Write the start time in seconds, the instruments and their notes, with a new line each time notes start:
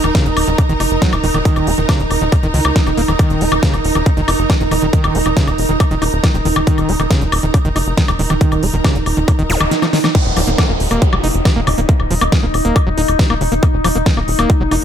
Already playing: ambient pad D#4, string section D#4 A#4 A#5
0.04 analog synth bass D#1, acid bass D#3, closed hi-hat, high woodblock
0.15 acid bass C#3, kick, snare, closed hi-hat
0.26 analog synth bass D#1, acid bass D#3, closed hi-hat
0.37 analog synth bass D#1, open hi-hat, high woodblock
0.47 analog synth bass D#1, acid bass D#3, closed hi-hat
0.58 acid bass C#3, kick, closed hi-hat, high woodblock
0.69 analog synth bass F1, acid bass D#3, closed hi-hat
0.80 analog synth bass F1, acid bass D#4, open hi-hat, high woodblock
0.91 analog synth bass F1
1.02 acid bass F#3, kick, snare, closed hi-hat
1.13 analog synth bass D#1, acid bass D#3, closed hi-hat, high woodblock
1.24 analog synth bass D#1, acid bass D#3, open hi-hat
1.34 analog synth bass D#1, acid bass D#3, closed hi-hat, high woodblock
1.45 acid bass D#3, kick, closed hi-hat
1.56 analog synth bass D#1, closed hi-hat, high woodblock
1.67 analog synth bass D#1, acid bass A#3, open hi-hat
1.78 analog synth bass D#1, acid bass D#3, closed hi-hat
1.89 acid bass C#3, kick, snare, closed hi-hat, high woodblock
2.00 analog synth bass D#1, acid bass D#3, closed hi-hat
2.11 analog synth bass D#1, open hi-hat, high woodblock
2.21 analog synth bass D#1, acid bass D#3
2.32 acid bass C#3, kick, closed hi-hat, high woodblock
2.43 analog synth bass D#1, acid bass D#3, closed hi-hat
2.54 analog synth bass C#2, acid bass D#3, open hi-hat
2.65 analog synth bass C#2, closed hi-hat, high woodblock
2.76 acid bass D#4, kick, snare, closed hi-hat
2.87 analog synth bass D#1, acid bass D#3, closed hi-hat, high woodblock
2.97 analog synth bass D#1, acid bass A#3, open hi-hat
3.08 analog synth bass D#1, acid bass D#3, closed hi-hat, high woodblock
3.19 acid bass D#3, kick, closed hi-hat, high woodblock
3.30 analog synth bass D#1, closed hi-hat
3.41 analog synth bass D#1, acid bass A#3, open hi-hat
3.52 analog synth bass D#1, acid bass D#3, high woodblock
3.63 acid bass C#3, kick, snare, closed hi-hat
3.74 analog synth bass D#1, acid bass D#3, closed hi-hat, high woodblock
3.84 analog synth bass D#1, open hi-hat
3.95 analog synth bass D#1, acid bass D#3, high woodblock
4.06 acid bass C#3, kick, closed hi-hat
4.17 analog synth bass F1, acid bass D#3, closed hi-hat
4.28 analog synth bass F1, acid bass D#4, open hi-hat, high woodblock
4.39 analog synth bass F1, closed hi-hat
4.50 acid bass D#3, kick, snare, closed hi-hat, high woodblock
4.61 analog synth bass D#1, acid bass D#3, closed hi-hat
4.71 analog synth bass D#1, acid bass D#3, open hi-hat, high woodblock
4.82 analog synth bass D#1, acid bass D#3, closed hi-hat
4.93 acid bass D#3, kick, closed hi-hat
5.04 analog synth bass D#1, closed hi-hat, high woodblock
5.15 analog synth bass D#1, acid bass A#3, open hi-hat
5.26 analog synth bass D#1, acid bass D#3, high woodblock
5.37 acid bass C#3, kick, snare, closed hi-hat
5.47 analog synth bass D#1, acid bass D#3, closed hi-hat, high woodblock
5.58 analog synth bass D#1, open hi-hat
5.69 analog synth bass D#1, acid bass D#3
5.80 acid bass C#3, kick, closed hi-hat, high woodblock
5.91 analog synth bass D#1, acid bass D#3, closed hi-hat
6.02 analog synth bass D#1, acid bass D#4, open hi-hat, high woodblock
6.13 analog synth bass D#1, closed hi-hat
6.24 acid bass D#3, kick, snare, closed hi-hat, high woodblock
6.34 analog synth bass D#1, acid bass D#3, closed hi-hat
6.45 analog synth bass D#1, acid bass D#3, open hi-hat
6.56 analog synth bass D#1, acid bass D#3, high woodblock
6.67 acid bass D#3, kick, closed hi-hat
6.78 analog synth bass D#1, closed hi-hat, high woodblock
6.89 analog synth bass D#1, acid bass A#3, open hi-hat
7.00 analog synth bass D#1, acid bass D#3, closed hi-hat, high woodblock
7.11 acid bass C#3, kick, snare, closed hi-hat
7.21 analog synth bass D#1, acid bass D#3, closed hi-hat
7.32 analog synth bass D#1, open hi-hat, high woodblock
7.43 analog synth bass D#1, acid bass D#3, closed hi-hat
7.54 acid bass C#3, kick, closed hi-hat, high woodblock
7.65 analog synth bass F1, acid bass D#3, closed hi-hat
7.76 analog synth bass F1, acid bass D#4, open hi-hat, high woodblock
7.87 analog synth bass F1, closed hi-hat
7.97 acid bass D#3, kick, snare, closed hi-hat
8.08 analog synth bass D#1, acid bass D#3, closed hi-hat, high woodblock
8.19 analog synth bass D#1, acid bass D#3, open hi-hat
8.30 analog synth bass D#1, acid bass D#3, closed hi-hat, high woodblock
8.41 acid bass D#3, kick, closed hi-hat
8.52 analog synth bass D#1, closed hi-hat, high woodblock
8.63 analog synth bass D#1, acid bass A#3, open hi-hat
8.74 analog synth bass D#1, acid bass D#3, closed hi-hat
8.84 acid bass C#3, kick, snare, closed hi-hat, high woodblock
8.95 analog synth bass D#1, acid bass D#3, closed hi-hat
9.06 analog synth bass D#1, open hi-hat, high woodblock
9.17 analog synth bass D#1, acid bass D#3, closed hi-hat
9.28 acid bass C#3, kick, closed hi-hat, swell, high woodblock
9.39 analog synth bass D#1, acid bass D#3, closed hi-hat
9.50 analog synth bass D#1, acid bass F3, open hi-hat, zap
9.61 analog synth bass D#1, acid bass D#3, closed hi-hat, high woodblock
9.71 acid bass D#3, snare, closed hi-hat
9.82 acid bass F3, snare, closed hi-hat, high woodblock
9.93 acid bass D#3, snare, open hi-hat
10.04 acid bass D#3, snare, closed hi-hat, high woodblock
10.15 acid bass D#3, ambient pad D#4, kick, closed hi-hat, crash, downlifter
10.26 analog synth bass D#1
10.37 analog synth bass D#1, acid bass F3, open hi-hat, high woodblock
10.47 analog synth bass D#1, acid bass A#3, closed hi-hat
10.58 acid bass D#3, kick, snare, closed hi-hat, high woodblock
10.69 analog synth bass D#1, acid bass A#3
10.80 analog synth bass D#1, open hi-hat
10.91 analog synth bass D#1, acid bass A#3, closed hi-hat, high woodblock
11.02 acid bass D#3, kick, closed hi-hat
11.13 analog synth bass F1, acid bass F#3, high woodblock
11.24 analog synth bass F1, acid bass D#4, open hi-hat
11.34 analog synth bass F1, closed hi-hat
11.45 acid bass D#3, kick, snare, closed hi-hat, high woodblock
11.56 analog synth bass D#1, acid bass A#3
11.67 analog synth bass D#1, acid bass C#3, open hi-hat, high woodblock
11.78 analog synth bass D#1, acid bass A#3, closed hi-hat
11.89 acid bass D#3, kick, closed hi-hat
12.00 analog synth bass D#1, high woodblock
12.11 analog synth bass D#1, acid bass F3, open hi-hat
12.21 analog synth bass D#1, acid bass A#3, closed hi-hat, high woodblock
12.32 acid bass D#3, kick, snare, closed hi-hat
12.43 analog synth bass D#1, acid bass A#3
12.54 analog synth bass D#1, open hi-hat, high woodblock
12.65 analog synth bass D#1, acid bass A#3, closed hi-hat
12.76 acid bass D#3, kick, closed hi-hat, high woodblock
12.87 analog synth bass D#1, acid bass F#3
12.97 analog synth bass D#1, acid bass D#4, open hi-hat
13.08 analog synth bass D#1, closed hi-hat, high woodblock
13.19 acid bass D#3, kick, snare, closed hi-hat
13.30 analog synth bass D#1, acid bass A#3, high woodblock
13.41 analog synth bass D#1, acid bass C#3, open hi-hat
13.52 analog synth bass D#1, acid bass A#3, closed hi-hat
13.63 acid bass D#3, kick, closed hi-hat, high woodblock
13.74 analog synth bass D#1
13.84 analog synth bass D#1, acid bass F3, open hi-hat, high woodblock
13.95 analog synth bass D#1, acid bass A#3, closed hi-hat
14.06 acid bass D#3, kick, snare, closed hi-hat
14.17 analog synth bass D#1, acid bass A#3, high woodblock
14.28 analog synth bass D#1, open hi-hat
14.39 analog synth bass D#1, acid bass A#3, closed hi-hat, high woodblock
14.50 acid bass D#3, kick, closed hi-hat
14.61 analog synth bass F1, acid bass F#3
14.71 analog synth bass F1, acid bass D#4, open hi-hat, high woodblock